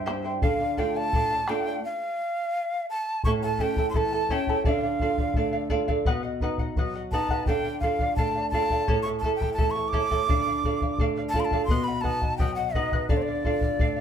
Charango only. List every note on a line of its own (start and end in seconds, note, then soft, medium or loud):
0.06 0.24 E4 medium
0.06 0.25 G4 medium
0.06 0.24 C5 medium
0.06 0.25 E5 medium
0.06 0.23 G5 medium
0.24 0.42 E4 soft
0.24 0.42 C5 soft
0.24 0.43 G5 soft
0.42 0.60 A4 medium
0.42 0.61 D5 medium
0.42 0.59 F5 medium
0.60 0.77 D5 soft
0.60 0.78 F5 soft
0.77 0.96 A4 medium
0.77 0.96 D5 medium
0.77 0.94 F5 medium
0.95 1.13 D5 soft
0.95 1.13 F5 soft
1.14 1.31 A4 medium
1.14 1.31 D5 medium
1.14 1.30 F5 medium
1.31 1.48 D5 soft
1.31 1.48 F5 medium
1.48 1.66 A4 medium
1.48 1.67 D5 medium
1.48 1.65 F5 medium
1.66 1.85 D5 soft
1.66 1.84 F5 soft
3.26 3.43 E4 medium
3.26 3.42 A4 medium
3.26 3.43 C#5 medium
3.26 3.43 E5 medium
3.26 3.42 A5 medium
3.43 3.59 E4 soft
3.43 3.60 A4 soft
3.43 3.60 A5 soft
3.59 3.78 E4 medium
3.59 3.77 A4 medium
3.59 3.77 E5 medium
3.59 3.77 A5 medium
3.78 3.94 E4 soft
3.78 3.94 A4 soft
3.78 3.95 A5 soft
3.94 4.13 E4 medium
3.94 4.12 A4 medium
3.94 4.12 E5 medium
3.94 4.12 A5 medium
4.13 4.29 E4 soft
4.13 4.30 A4 soft
4.13 4.30 A5 medium
4.30 4.48 E4 medium
4.30 4.48 A4 medium
4.30 4.48 C#5 medium
4.30 4.48 E5 medium
4.30 4.48 A5 medium
4.49 4.65 E4 medium
4.49 4.64 A4 medium
4.49 4.67 C#5 medium
4.49 4.66 E5 medium
4.49 4.66 A5 medium
4.65 4.83 A4 medium
4.65 4.83 D5 medium
4.65 4.82 F5 medium
4.83 5.01 D5 soft
4.83 5.01 F5 soft
5.01 5.19 A4 medium
5.01 5.19 D5 medium
5.01 5.17 F5 medium
5.19 5.36 D5 soft
5.19 5.36 F5 medium
5.36 5.54 A4 medium
5.36 5.53 D5 medium
5.36 5.52 F5 medium
5.53 5.69 D5 soft
5.53 5.70 F5 medium
5.70 5.88 A4 medium
5.70 5.87 D5 medium
5.70 5.87 F5 medium
5.88 6.07 A4 medium
5.88 6.06 D5 medium
5.88 6.06 F5 medium
6.06 6.24 B4 medium
6.06 6.22 D#5 medium
6.06 6.22 F#5 medium
6.23 6.41 D#5 soft
6.23 6.41 F#5 medium
6.42 6.59 B4 medium
6.42 6.59 D#5 medium
6.42 6.58 F#5 medium
6.59 6.77 D#5 soft
6.59 6.77 F#5 medium
6.77 6.95 B4 medium
6.77 6.95 D#5 medium
6.77 6.94 F#5 medium
6.95 7.12 D#5 soft
6.95 7.12 F#5 medium
7.13 7.30 B4 medium
7.13 7.30 D#5 medium
7.13 7.29 F#5 medium
7.30 7.48 B4 medium
7.30 7.48 D#5 medium
7.30 7.47 F#5 medium
7.47 7.65 A4 medium
7.47 7.65 D5 medium
7.47 7.64 F5 medium
7.65 7.83 D5 soft
7.65 7.82 F5 soft
7.83 8.00 A4 medium
7.83 8.01 D5 medium
7.83 7.99 F5 medium
8.01 8.18 D5 soft
8.01 8.17 F5 soft
8.18 8.35 A4 medium
8.18 8.36 D5 medium
8.18 8.34 F5 medium
8.36 8.53 D5 soft
8.36 8.53 F5 soft
8.53 8.70 A4 medium
8.53 8.71 D5 medium
8.53 8.70 F5 medium
8.72 8.87 A4 medium
8.72 8.88 D5 medium
8.72 8.88 F5 medium
8.88 9.06 E4 medium
8.88 9.06 A4 medium
8.88 9.05 C#5 medium
8.88 9.05 E5 medium
8.88 9.05 A5 medium
9.07 9.23 E4 soft
9.07 9.24 A4 soft
9.07 9.24 A5 medium
9.24 9.41 E4 medium
9.24 9.40 A4 medium
9.24 9.41 E5 medium
9.24 9.40 A5 medium
9.41 9.57 E4 soft
9.41 9.57 A4 soft
9.41 9.58 A5 soft
9.58 9.75 E4 medium
9.58 9.75 A4 medium
9.58 9.76 E5 medium
9.58 9.74 A5 medium
9.75 9.92 E4 soft
9.75 9.93 A4 soft
9.75 9.93 A5 medium
9.93 10.10 E4 medium
9.93 10.10 A4 medium
9.93 10.11 C#5 medium
9.93 10.10 E5 medium
9.93 10.10 A5 medium
10.11 10.29 E4 medium
10.11 10.28 A4 medium
10.11 10.29 C#5 medium
10.11 10.29 E5 medium
10.11 10.29 A5 medium
10.29 10.46 A4 medium
10.29 10.47 D5 medium
10.29 10.46 F5 medium
10.47 10.64 D5 soft
10.47 10.64 F5 medium
10.65 10.82 A4 medium
10.65 10.82 D5 medium
10.65 10.81 F5 medium
10.82 10.99 D5 soft
10.82 10.99 F5 medium
11.00 11.17 A4 medium
11.00 11.17 D5 medium
11.00 11.16 F5 medium
11.18 11.35 D5 soft
11.18 11.35 F5 medium
11.35 11.52 A4 medium
11.35 11.52 D5 medium
11.35 11.52 F5 medium
11.53 11.70 A4 medium
11.53 11.70 D5 medium
11.53 11.70 F5 medium
11.70 11.87 B4 medium
11.70 11.87 D#5 medium
11.70 11.87 F#5 medium
11.88 12.02 D#5 soft
11.88 12.03 F#5 medium
12.04 12.22 B4 medium
12.04 12.21 D#5 medium
12.04 12.20 F#5 medium
12.21 12.39 D#5 soft
12.21 12.39 F#5 soft
12.39 12.57 B4 medium
12.39 12.57 D#5 medium
12.39 12.56 F#5 medium
12.58 12.74 D#5 soft
12.58 12.75 F#5 medium
12.75 12.93 B4 medium
12.75 12.92 D#5 medium
12.75 12.92 F#5 medium
12.93 13.09 B4 medium
12.93 13.09 D#5 medium
12.93 13.10 F#5 medium
13.09 13.27 A4 medium
13.09 13.27 D5 medium
13.09 13.27 F5 medium
13.28 13.45 D5 soft
13.28 13.45 F5 medium
13.45 13.63 A4 medium
13.45 13.63 D5 medium
13.45 13.61 F5 medium
13.62 13.79 D5 soft
13.62 13.80 F5 soft
13.79 13.98 A4 medium
13.79 13.97 D5 medium
13.79 13.95 F5 medium
13.96 14.01 F5 medium